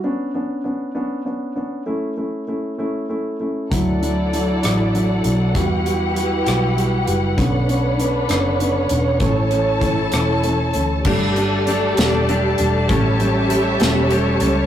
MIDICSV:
0, 0, Header, 1, 6, 480
1, 0, Start_track
1, 0, Tempo, 610998
1, 38, Time_signature, 6, 3, 24, 8
1, 11519, End_track
2, 0, Start_track
2, 0, Title_t, "String section"
2, 0, Program_c, 0, 48
2, 2913, Note_on_c, 0, 64, 49
2, 2915, Note_on_c, 0, 78, 57
2, 2917, Note_on_c, 0, 74, 45
2, 2918, Note_on_c, 0, 69, 42
2, 4344, Note_off_c, 0, 64, 0
2, 4346, Note_off_c, 0, 74, 0
2, 4347, Note_off_c, 0, 69, 0
2, 4360, Note_on_c, 0, 67, 52
2, 4363, Note_on_c, 0, 64, 48
2, 4363, Note_on_c, 0, 71, 46
2, 5783, Note_off_c, 0, 67, 0
2, 5784, Note_off_c, 0, 64, 0
2, 5784, Note_off_c, 0, 71, 0
2, 5791, Note_on_c, 0, 62, 55
2, 5791, Note_on_c, 0, 73, 52
2, 5792, Note_on_c, 0, 71, 55
2, 7200, Note_off_c, 0, 78, 0
2, 7216, Note_off_c, 0, 62, 0
2, 7216, Note_off_c, 0, 71, 0
2, 7222, Note_on_c, 0, 81, 66
2, 7223, Note_on_c, 0, 69, 47
2, 7225, Note_on_c, 0, 64, 56
2, 8656, Note_off_c, 0, 73, 0
2, 8668, Note_off_c, 0, 69, 0
2, 8668, Note_off_c, 0, 81, 0
2, 8669, Note_off_c, 0, 64, 0
2, 8679, Note_on_c, 0, 81, 58
2, 8684, Note_on_c, 0, 69, 56
2, 8684, Note_on_c, 0, 74, 47
2, 8685, Note_on_c, 0, 67, 56
2, 10114, Note_off_c, 0, 67, 0
2, 10114, Note_off_c, 0, 69, 0
2, 10114, Note_off_c, 0, 74, 0
2, 10132, Note_on_c, 0, 76, 52
2, 10134, Note_on_c, 0, 67, 55
2, 10135, Note_on_c, 0, 73, 55
2, 11519, Note_off_c, 0, 67, 0
2, 11519, Note_off_c, 0, 73, 0
2, 11519, Note_off_c, 0, 76, 0
2, 11519, Note_off_c, 0, 81, 0
2, 11519, End_track
3, 0, Start_track
3, 0, Title_t, "Clean electric guitar"
3, 0, Program_c, 1, 27
3, 8683, Note_on_c, 1, 55, 77
3, 8687, Note_on_c, 1, 57, 63
3, 8691, Note_on_c, 1, 62, 71
3, 8695, Note_on_c, 1, 67, 87
3, 8913, Note_off_c, 1, 67, 0
3, 8921, Note_off_c, 1, 62, 0
3, 8922, Note_on_c, 1, 67, 47
3, 8928, Note_off_c, 1, 55, 0
3, 8928, Note_off_c, 1, 57, 0
3, 8930, Note_on_c, 1, 62, 41
3, 8938, Note_on_c, 1, 57, 38
3, 9163, Note_off_c, 1, 57, 0
3, 9166, Note_on_c, 1, 55, 52
3, 9167, Note_off_c, 1, 62, 0
3, 9168, Note_off_c, 1, 67, 0
3, 9173, Note_on_c, 1, 57, 59
3, 9176, Note_on_c, 1, 62, 56
3, 9181, Note_on_c, 1, 67, 55
3, 9398, Note_off_c, 1, 67, 0
3, 9403, Note_off_c, 1, 62, 0
3, 9406, Note_off_c, 1, 57, 0
3, 9407, Note_on_c, 1, 67, 55
3, 9409, Note_off_c, 1, 55, 0
3, 9413, Note_on_c, 1, 62, 54
3, 9416, Note_on_c, 1, 57, 46
3, 9419, Note_on_c, 1, 55, 53
3, 9637, Note_off_c, 1, 55, 0
3, 9643, Note_off_c, 1, 57, 0
3, 9646, Note_on_c, 1, 55, 52
3, 9648, Note_off_c, 1, 62, 0
3, 9650, Note_off_c, 1, 67, 0
3, 9652, Note_on_c, 1, 57, 60
3, 9657, Note_on_c, 1, 62, 57
3, 9662, Note_on_c, 1, 67, 68
3, 9877, Note_off_c, 1, 67, 0
3, 9884, Note_off_c, 1, 62, 0
3, 9886, Note_on_c, 1, 67, 53
3, 9888, Note_off_c, 1, 55, 0
3, 9891, Note_off_c, 1, 57, 0
3, 9894, Note_on_c, 1, 62, 49
3, 9901, Note_on_c, 1, 57, 39
3, 10125, Note_on_c, 1, 45, 74
3, 10127, Note_off_c, 1, 57, 0
3, 10127, Note_off_c, 1, 67, 0
3, 10130, Note_on_c, 1, 52, 85
3, 10130, Note_on_c, 1, 55, 80
3, 10131, Note_off_c, 1, 62, 0
3, 10135, Note_on_c, 1, 61, 85
3, 10138, Note_on_c, 1, 67, 81
3, 10353, Note_off_c, 1, 67, 0
3, 10360, Note_off_c, 1, 61, 0
3, 10362, Note_on_c, 1, 67, 47
3, 10366, Note_off_c, 1, 45, 0
3, 10368, Note_off_c, 1, 52, 0
3, 10368, Note_off_c, 1, 55, 0
3, 10370, Note_on_c, 1, 61, 49
3, 10377, Note_on_c, 1, 55, 45
3, 10597, Note_off_c, 1, 55, 0
3, 10600, Note_on_c, 1, 52, 56
3, 10601, Note_off_c, 1, 61, 0
3, 10603, Note_off_c, 1, 67, 0
3, 10606, Note_on_c, 1, 55, 64
3, 10611, Note_on_c, 1, 61, 59
3, 10617, Note_on_c, 1, 67, 66
3, 10828, Note_off_c, 1, 67, 0
3, 10832, Note_off_c, 1, 61, 0
3, 10833, Note_off_c, 1, 55, 0
3, 10837, Note_on_c, 1, 67, 60
3, 10838, Note_off_c, 1, 52, 0
3, 10842, Note_on_c, 1, 61, 50
3, 10843, Note_on_c, 1, 55, 58
3, 10847, Note_on_c, 1, 52, 56
3, 10850, Note_on_c, 1, 45, 51
3, 11064, Note_off_c, 1, 52, 0
3, 11070, Note_off_c, 1, 55, 0
3, 11074, Note_on_c, 1, 52, 59
3, 11075, Note_off_c, 1, 61, 0
3, 11078, Note_off_c, 1, 67, 0
3, 11079, Note_on_c, 1, 55, 66
3, 11084, Note_off_c, 1, 45, 0
3, 11085, Note_on_c, 1, 61, 63
3, 11089, Note_on_c, 1, 67, 74
3, 11305, Note_off_c, 1, 67, 0
3, 11314, Note_off_c, 1, 61, 0
3, 11314, Note_on_c, 1, 67, 59
3, 11315, Note_off_c, 1, 52, 0
3, 11318, Note_off_c, 1, 55, 0
3, 11323, Note_on_c, 1, 61, 50
3, 11329, Note_on_c, 1, 55, 46
3, 11519, Note_off_c, 1, 55, 0
3, 11519, Note_off_c, 1, 61, 0
3, 11519, Note_off_c, 1, 67, 0
3, 11519, End_track
4, 0, Start_track
4, 0, Title_t, "Grand piano"
4, 0, Program_c, 2, 0
4, 29, Note_on_c, 2, 59, 58
4, 31, Note_on_c, 2, 61, 60
4, 33, Note_on_c, 2, 62, 72
4, 236, Note_off_c, 2, 59, 0
4, 237, Note_off_c, 2, 61, 0
4, 237, Note_off_c, 2, 62, 0
4, 269, Note_on_c, 2, 59, 53
4, 273, Note_on_c, 2, 61, 49
4, 277, Note_on_c, 2, 62, 66
4, 475, Note_off_c, 2, 59, 0
4, 477, Note_off_c, 2, 61, 0
4, 479, Note_off_c, 2, 62, 0
4, 504, Note_on_c, 2, 59, 54
4, 508, Note_on_c, 2, 61, 48
4, 509, Note_on_c, 2, 62, 58
4, 712, Note_off_c, 2, 59, 0
4, 714, Note_off_c, 2, 61, 0
4, 715, Note_off_c, 2, 62, 0
4, 745, Note_on_c, 2, 59, 64
4, 748, Note_on_c, 2, 61, 57
4, 748, Note_on_c, 2, 62, 69
4, 952, Note_off_c, 2, 59, 0
4, 953, Note_off_c, 2, 61, 0
4, 953, Note_off_c, 2, 62, 0
4, 984, Note_on_c, 2, 59, 57
4, 988, Note_on_c, 2, 61, 49
4, 991, Note_on_c, 2, 62, 57
4, 1191, Note_off_c, 2, 59, 0
4, 1193, Note_off_c, 2, 61, 0
4, 1194, Note_off_c, 2, 62, 0
4, 1222, Note_on_c, 2, 59, 53
4, 1225, Note_on_c, 2, 61, 46
4, 1228, Note_on_c, 2, 62, 62
4, 1430, Note_off_c, 2, 59, 0
4, 1431, Note_off_c, 2, 61, 0
4, 1433, Note_off_c, 2, 62, 0
4, 1463, Note_on_c, 2, 57, 63
4, 1463, Note_on_c, 2, 61, 57
4, 1466, Note_on_c, 2, 64, 65
4, 1670, Note_off_c, 2, 57, 0
4, 1670, Note_off_c, 2, 61, 0
4, 1671, Note_off_c, 2, 64, 0
4, 1705, Note_on_c, 2, 57, 50
4, 1709, Note_on_c, 2, 61, 44
4, 1709, Note_on_c, 2, 64, 54
4, 1911, Note_off_c, 2, 57, 0
4, 1913, Note_off_c, 2, 61, 0
4, 1913, Note_off_c, 2, 64, 0
4, 1945, Note_on_c, 2, 57, 52
4, 1947, Note_on_c, 2, 61, 44
4, 1951, Note_on_c, 2, 64, 60
4, 2152, Note_off_c, 2, 57, 0
4, 2153, Note_off_c, 2, 61, 0
4, 2155, Note_off_c, 2, 64, 0
4, 2186, Note_on_c, 2, 57, 59
4, 2187, Note_on_c, 2, 61, 58
4, 2192, Note_on_c, 2, 64, 70
4, 2393, Note_off_c, 2, 57, 0
4, 2394, Note_off_c, 2, 61, 0
4, 2397, Note_off_c, 2, 64, 0
4, 2428, Note_on_c, 2, 57, 56
4, 2430, Note_on_c, 2, 61, 45
4, 2431, Note_on_c, 2, 64, 60
4, 2636, Note_off_c, 2, 57, 0
4, 2637, Note_off_c, 2, 61, 0
4, 2637, Note_off_c, 2, 64, 0
4, 2669, Note_on_c, 2, 57, 53
4, 2673, Note_on_c, 2, 61, 47
4, 2674, Note_on_c, 2, 64, 58
4, 2878, Note_off_c, 2, 57, 0
4, 2879, Note_off_c, 2, 61, 0
4, 2880, Note_off_c, 2, 64, 0
4, 2911, Note_on_c, 2, 54, 61
4, 2914, Note_on_c, 2, 62, 53
4, 2917, Note_on_c, 2, 64, 69
4, 3119, Note_off_c, 2, 54, 0
4, 3121, Note_off_c, 2, 62, 0
4, 3123, Note_off_c, 2, 64, 0
4, 3155, Note_on_c, 2, 54, 51
4, 3157, Note_on_c, 2, 62, 48
4, 3161, Note_on_c, 2, 64, 60
4, 3362, Note_off_c, 2, 54, 0
4, 3363, Note_off_c, 2, 62, 0
4, 3364, Note_off_c, 2, 64, 0
4, 3399, Note_on_c, 2, 54, 53
4, 3401, Note_on_c, 2, 62, 46
4, 3402, Note_on_c, 2, 64, 53
4, 3603, Note_off_c, 2, 54, 0
4, 3604, Note_off_c, 2, 62, 0
4, 3604, Note_off_c, 2, 64, 0
4, 3633, Note_on_c, 2, 54, 60
4, 3635, Note_on_c, 2, 62, 57
4, 3637, Note_on_c, 2, 64, 67
4, 3840, Note_off_c, 2, 54, 0
4, 3841, Note_off_c, 2, 62, 0
4, 3842, Note_off_c, 2, 64, 0
4, 3876, Note_on_c, 2, 54, 55
4, 3881, Note_on_c, 2, 62, 57
4, 3882, Note_on_c, 2, 64, 63
4, 4081, Note_off_c, 2, 54, 0
4, 4084, Note_off_c, 2, 62, 0
4, 4084, Note_off_c, 2, 64, 0
4, 4115, Note_on_c, 2, 54, 54
4, 4120, Note_on_c, 2, 62, 44
4, 4121, Note_on_c, 2, 64, 58
4, 4321, Note_off_c, 2, 54, 0
4, 4323, Note_off_c, 2, 62, 0
4, 4324, Note_off_c, 2, 64, 0
4, 4353, Note_on_c, 2, 55, 63
4, 4357, Note_on_c, 2, 64, 61
4, 4358, Note_on_c, 2, 66, 65
4, 4560, Note_off_c, 2, 55, 0
4, 4562, Note_off_c, 2, 64, 0
4, 4563, Note_off_c, 2, 66, 0
4, 4593, Note_on_c, 2, 55, 54
4, 4595, Note_on_c, 2, 64, 49
4, 4596, Note_on_c, 2, 66, 58
4, 4800, Note_off_c, 2, 55, 0
4, 4801, Note_off_c, 2, 64, 0
4, 4801, Note_off_c, 2, 66, 0
4, 4833, Note_on_c, 2, 55, 55
4, 4837, Note_on_c, 2, 64, 50
4, 4838, Note_on_c, 2, 66, 57
4, 5039, Note_off_c, 2, 55, 0
4, 5041, Note_off_c, 2, 64, 0
4, 5042, Note_off_c, 2, 66, 0
4, 5075, Note_on_c, 2, 55, 61
4, 5077, Note_on_c, 2, 64, 55
4, 5078, Note_on_c, 2, 66, 73
4, 5280, Note_off_c, 2, 55, 0
4, 5280, Note_off_c, 2, 64, 0
4, 5281, Note_off_c, 2, 66, 0
4, 5317, Note_on_c, 2, 55, 58
4, 5319, Note_on_c, 2, 64, 50
4, 5320, Note_on_c, 2, 66, 69
4, 5520, Note_off_c, 2, 55, 0
4, 5521, Note_off_c, 2, 64, 0
4, 5522, Note_off_c, 2, 66, 0
4, 5550, Note_on_c, 2, 55, 55
4, 5554, Note_on_c, 2, 66, 62
4, 5555, Note_on_c, 2, 64, 49
4, 5756, Note_off_c, 2, 55, 0
4, 5759, Note_off_c, 2, 64, 0
4, 5759, Note_off_c, 2, 66, 0
4, 5790, Note_on_c, 2, 50, 69
4, 5793, Note_on_c, 2, 59, 67
4, 5794, Note_on_c, 2, 61, 74
4, 5996, Note_off_c, 2, 50, 0
4, 5998, Note_off_c, 2, 59, 0
4, 5998, Note_off_c, 2, 61, 0
4, 6028, Note_on_c, 2, 50, 61
4, 6028, Note_on_c, 2, 59, 53
4, 6032, Note_on_c, 2, 61, 65
4, 6235, Note_off_c, 2, 50, 0
4, 6235, Note_off_c, 2, 59, 0
4, 6237, Note_off_c, 2, 61, 0
4, 6266, Note_on_c, 2, 50, 50
4, 6269, Note_on_c, 2, 59, 52
4, 6269, Note_on_c, 2, 61, 58
4, 6473, Note_off_c, 2, 50, 0
4, 6475, Note_off_c, 2, 59, 0
4, 6475, Note_off_c, 2, 61, 0
4, 6505, Note_on_c, 2, 50, 66
4, 6510, Note_on_c, 2, 59, 60
4, 6512, Note_on_c, 2, 61, 67
4, 6713, Note_off_c, 2, 50, 0
4, 6715, Note_off_c, 2, 59, 0
4, 6716, Note_off_c, 2, 61, 0
4, 6753, Note_on_c, 2, 50, 64
4, 6753, Note_on_c, 2, 59, 55
4, 6755, Note_on_c, 2, 61, 64
4, 6956, Note_off_c, 2, 50, 0
4, 6956, Note_off_c, 2, 59, 0
4, 6957, Note_off_c, 2, 61, 0
4, 6986, Note_on_c, 2, 50, 55
4, 6988, Note_on_c, 2, 59, 48
4, 6992, Note_on_c, 2, 61, 64
4, 7192, Note_off_c, 2, 50, 0
4, 7193, Note_off_c, 2, 59, 0
4, 7195, Note_off_c, 2, 61, 0
4, 7227, Note_on_c, 2, 52, 66
4, 7230, Note_on_c, 2, 57, 61
4, 7232, Note_on_c, 2, 61, 78
4, 7433, Note_off_c, 2, 52, 0
4, 7435, Note_off_c, 2, 57, 0
4, 7436, Note_off_c, 2, 61, 0
4, 7469, Note_on_c, 2, 52, 56
4, 7473, Note_on_c, 2, 57, 48
4, 7476, Note_on_c, 2, 61, 59
4, 7675, Note_off_c, 2, 52, 0
4, 7677, Note_off_c, 2, 57, 0
4, 7679, Note_off_c, 2, 61, 0
4, 7708, Note_on_c, 2, 52, 50
4, 7710, Note_on_c, 2, 57, 49
4, 7712, Note_on_c, 2, 61, 49
4, 7917, Note_off_c, 2, 52, 0
4, 7918, Note_off_c, 2, 57, 0
4, 7919, Note_off_c, 2, 61, 0
4, 7949, Note_on_c, 2, 52, 59
4, 7954, Note_on_c, 2, 57, 57
4, 7956, Note_on_c, 2, 61, 65
4, 8159, Note_off_c, 2, 52, 0
4, 8162, Note_off_c, 2, 57, 0
4, 8163, Note_off_c, 2, 61, 0
4, 8200, Note_on_c, 2, 52, 49
4, 8202, Note_on_c, 2, 61, 62
4, 8203, Note_on_c, 2, 57, 55
4, 8406, Note_off_c, 2, 52, 0
4, 8407, Note_off_c, 2, 61, 0
4, 8408, Note_off_c, 2, 57, 0
4, 8440, Note_on_c, 2, 52, 51
4, 8444, Note_on_c, 2, 57, 44
4, 8446, Note_on_c, 2, 61, 57
4, 8648, Note_off_c, 2, 52, 0
4, 8650, Note_off_c, 2, 57, 0
4, 8651, Note_off_c, 2, 61, 0
4, 8683, Note_on_c, 2, 55, 69
4, 8685, Note_on_c, 2, 57, 66
4, 8687, Note_on_c, 2, 62, 80
4, 8890, Note_off_c, 2, 55, 0
4, 8892, Note_off_c, 2, 57, 0
4, 8893, Note_off_c, 2, 62, 0
4, 8928, Note_on_c, 2, 55, 59
4, 8930, Note_on_c, 2, 57, 52
4, 8935, Note_on_c, 2, 62, 66
4, 9133, Note_off_c, 2, 55, 0
4, 9134, Note_off_c, 2, 57, 0
4, 9137, Note_off_c, 2, 62, 0
4, 9168, Note_on_c, 2, 55, 57
4, 9171, Note_on_c, 2, 57, 52
4, 9175, Note_on_c, 2, 62, 61
4, 9373, Note_off_c, 2, 55, 0
4, 9375, Note_off_c, 2, 57, 0
4, 9377, Note_off_c, 2, 62, 0
4, 9411, Note_on_c, 2, 55, 70
4, 9411, Note_on_c, 2, 57, 56
4, 9415, Note_on_c, 2, 62, 75
4, 9614, Note_off_c, 2, 57, 0
4, 9615, Note_off_c, 2, 55, 0
4, 9617, Note_off_c, 2, 62, 0
4, 9654, Note_on_c, 2, 57, 59
4, 9655, Note_on_c, 2, 55, 62
4, 9658, Note_on_c, 2, 62, 74
4, 9855, Note_off_c, 2, 57, 0
4, 9856, Note_off_c, 2, 55, 0
4, 9857, Note_off_c, 2, 62, 0
4, 9888, Note_on_c, 2, 55, 62
4, 9889, Note_on_c, 2, 57, 51
4, 9892, Note_on_c, 2, 62, 63
4, 10092, Note_off_c, 2, 55, 0
4, 10092, Note_off_c, 2, 57, 0
4, 10093, Note_off_c, 2, 62, 0
4, 10124, Note_on_c, 2, 55, 66
4, 10124, Note_on_c, 2, 57, 63
4, 10127, Note_on_c, 2, 61, 82
4, 10328, Note_off_c, 2, 55, 0
4, 10328, Note_off_c, 2, 57, 0
4, 10330, Note_off_c, 2, 61, 0
4, 10363, Note_on_c, 2, 55, 59
4, 10365, Note_on_c, 2, 57, 55
4, 10367, Note_on_c, 2, 61, 69
4, 10566, Note_off_c, 2, 55, 0
4, 10568, Note_off_c, 2, 57, 0
4, 10568, Note_off_c, 2, 61, 0
4, 10601, Note_on_c, 2, 55, 59
4, 10602, Note_on_c, 2, 57, 56
4, 10605, Note_on_c, 2, 61, 64
4, 10804, Note_off_c, 2, 55, 0
4, 10805, Note_off_c, 2, 57, 0
4, 10806, Note_off_c, 2, 61, 0
4, 10839, Note_on_c, 2, 55, 65
4, 10841, Note_on_c, 2, 57, 61
4, 10842, Note_on_c, 2, 61, 72
4, 11042, Note_off_c, 2, 55, 0
4, 11043, Note_off_c, 2, 57, 0
4, 11044, Note_off_c, 2, 61, 0
4, 11080, Note_on_c, 2, 55, 68
4, 11082, Note_on_c, 2, 57, 63
4, 11085, Note_on_c, 2, 61, 72
4, 11282, Note_off_c, 2, 55, 0
4, 11283, Note_off_c, 2, 57, 0
4, 11284, Note_off_c, 2, 61, 0
4, 11318, Note_on_c, 2, 55, 63
4, 11323, Note_on_c, 2, 57, 62
4, 11326, Note_on_c, 2, 61, 66
4, 11519, Note_off_c, 2, 55, 0
4, 11519, Note_off_c, 2, 57, 0
4, 11519, Note_off_c, 2, 61, 0
4, 11519, End_track
5, 0, Start_track
5, 0, Title_t, "Fingered electric bass"
5, 0, Program_c, 3, 33
5, 2919, Note_on_c, 3, 38, 92
5, 3610, Note_off_c, 3, 38, 0
5, 3649, Note_on_c, 3, 33, 67
5, 4096, Note_off_c, 3, 33, 0
5, 4124, Note_on_c, 3, 35, 74
5, 4348, Note_off_c, 3, 35, 0
5, 4360, Note_on_c, 3, 40, 76
5, 5048, Note_off_c, 3, 40, 0
5, 5081, Note_on_c, 3, 35, 80
5, 5530, Note_off_c, 3, 35, 0
5, 5560, Note_on_c, 3, 30, 70
5, 5784, Note_off_c, 3, 30, 0
5, 5799, Note_on_c, 3, 35, 84
5, 6485, Note_off_c, 3, 35, 0
5, 6516, Note_on_c, 3, 30, 64
5, 6966, Note_off_c, 3, 30, 0
5, 6999, Note_on_c, 3, 28, 78
5, 7222, Note_off_c, 3, 28, 0
5, 7231, Note_on_c, 3, 33, 87
5, 7926, Note_off_c, 3, 33, 0
5, 7958, Note_on_c, 3, 28, 64
5, 8416, Note_off_c, 3, 28, 0
5, 8447, Note_on_c, 3, 38, 68
5, 8675, Note_off_c, 3, 38, 0
5, 8683, Note_on_c, 3, 31, 85
5, 9379, Note_off_c, 3, 31, 0
5, 9411, Note_on_c, 3, 28, 71
5, 9862, Note_off_c, 3, 28, 0
5, 9894, Note_on_c, 3, 28, 74
5, 10117, Note_off_c, 3, 28, 0
5, 10130, Note_on_c, 3, 33, 90
5, 10812, Note_off_c, 3, 33, 0
5, 10848, Note_on_c, 3, 28, 80
5, 11293, Note_off_c, 3, 28, 0
5, 11322, Note_on_c, 3, 37, 93
5, 11519, Note_off_c, 3, 37, 0
5, 11519, End_track
6, 0, Start_track
6, 0, Title_t, "Drums"
6, 2919, Note_on_c, 9, 36, 72
6, 2921, Note_on_c, 9, 42, 68
6, 2997, Note_off_c, 9, 36, 0
6, 2999, Note_off_c, 9, 42, 0
6, 3164, Note_on_c, 9, 42, 35
6, 3242, Note_off_c, 9, 42, 0
6, 3404, Note_on_c, 9, 42, 49
6, 3483, Note_off_c, 9, 42, 0
6, 3640, Note_on_c, 9, 42, 70
6, 3654, Note_on_c, 9, 37, 88
6, 3718, Note_off_c, 9, 42, 0
6, 3733, Note_off_c, 9, 37, 0
6, 3888, Note_on_c, 9, 42, 43
6, 3967, Note_off_c, 9, 42, 0
6, 4118, Note_on_c, 9, 42, 48
6, 4196, Note_off_c, 9, 42, 0
6, 4360, Note_on_c, 9, 36, 71
6, 4360, Note_on_c, 9, 42, 67
6, 4439, Note_off_c, 9, 36, 0
6, 4439, Note_off_c, 9, 42, 0
6, 4604, Note_on_c, 9, 42, 38
6, 4682, Note_off_c, 9, 42, 0
6, 4842, Note_on_c, 9, 42, 53
6, 4921, Note_off_c, 9, 42, 0
6, 5078, Note_on_c, 9, 42, 69
6, 5093, Note_on_c, 9, 37, 83
6, 5157, Note_off_c, 9, 42, 0
6, 5171, Note_off_c, 9, 37, 0
6, 5327, Note_on_c, 9, 42, 44
6, 5405, Note_off_c, 9, 42, 0
6, 5557, Note_on_c, 9, 42, 55
6, 5636, Note_off_c, 9, 42, 0
6, 5797, Note_on_c, 9, 36, 82
6, 5798, Note_on_c, 9, 42, 62
6, 5876, Note_off_c, 9, 36, 0
6, 5877, Note_off_c, 9, 42, 0
6, 6042, Note_on_c, 9, 42, 41
6, 6121, Note_off_c, 9, 42, 0
6, 6281, Note_on_c, 9, 42, 53
6, 6360, Note_off_c, 9, 42, 0
6, 6513, Note_on_c, 9, 42, 70
6, 6527, Note_on_c, 9, 37, 80
6, 6591, Note_off_c, 9, 42, 0
6, 6606, Note_off_c, 9, 37, 0
6, 6758, Note_on_c, 9, 42, 45
6, 6837, Note_off_c, 9, 42, 0
6, 6986, Note_on_c, 9, 42, 58
6, 7065, Note_off_c, 9, 42, 0
6, 7227, Note_on_c, 9, 42, 65
6, 7230, Note_on_c, 9, 36, 78
6, 7306, Note_off_c, 9, 42, 0
6, 7309, Note_off_c, 9, 36, 0
6, 7469, Note_on_c, 9, 42, 38
6, 7548, Note_off_c, 9, 42, 0
6, 7710, Note_on_c, 9, 36, 74
6, 7711, Note_on_c, 9, 42, 57
6, 7789, Note_off_c, 9, 36, 0
6, 7789, Note_off_c, 9, 42, 0
6, 7949, Note_on_c, 9, 42, 71
6, 7963, Note_on_c, 9, 37, 86
6, 8027, Note_off_c, 9, 42, 0
6, 8042, Note_off_c, 9, 37, 0
6, 8198, Note_on_c, 9, 42, 46
6, 8276, Note_off_c, 9, 42, 0
6, 8434, Note_on_c, 9, 42, 49
6, 8512, Note_off_c, 9, 42, 0
6, 8678, Note_on_c, 9, 49, 71
6, 8682, Note_on_c, 9, 36, 81
6, 8757, Note_off_c, 9, 49, 0
6, 8761, Note_off_c, 9, 36, 0
6, 8925, Note_on_c, 9, 42, 39
6, 9004, Note_off_c, 9, 42, 0
6, 9167, Note_on_c, 9, 42, 53
6, 9246, Note_off_c, 9, 42, 0
6, 9405, Note_on_c, 9, 42, 76
6, 9420, Note_on_c, 9, 38, 88
6, 9484, Note_off_c, 9, 42, 0
6, 9498, Note_off_c, 9, 38, 0
6, 9653, Note_on_c, 9, 42, 44
6, 9732, Note_off_c, 9, 42, 0
6, 9883, Note_on_c, 9, 42, 61
6, 9961, Note_off_c, 9, 42, 0
6, 10127, Note_on_c, 9, 42, 68
6, 10128, Note_on_c, 9, 36, 88
6, 10206, Note_off_c, 9, 42, 0
6, 10207, Note_off_c, 9, 36, 0
6, 10369, Note_on_c, 9, 42, 43
6, 10447, Note_off_c, 9, 42, 0
6, 10606, Note_on_c, 9, 42, 61
6, 10684, Note_off_c, 9, 42, 0
6, 10840, Note_on_c, 9, 42, 74
6, 10854, Note_on_c, 9, 38, 95
6, 10918, Note_off_c, 9, 42, 0
6, 10933, Note_off_c, 9, 38, 0
6, 11080, Note_on_c, 9, 42, 50
6, 11159, Note_off_c, 9, 42, 0
6, 11314, Note_on_c, 9, 42, 55
6, 11392, Note_off_c, 9, 42, 0
6, 11519, End_track
0, 0, End_of_file